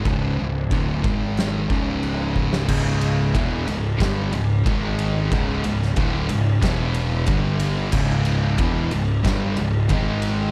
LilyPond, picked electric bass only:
\new Staff \with { instrumentName = "Picked electric bass" } { \clef bass \time 4/4 \key cis \minor \tempo 4 = 91 cis,,8 cis,,8 d,,8 gis,,4 cis,,4. | cis,,4 e,,8 cis,,8 g,,8 cis,,8 gis,,4 | cis,,8 cis,,8 d,,8 cis,,8 e,,4 g,,4 | cis,,4 e,,8 cis,,8 g,,8 cis,,8 gis,,4 | }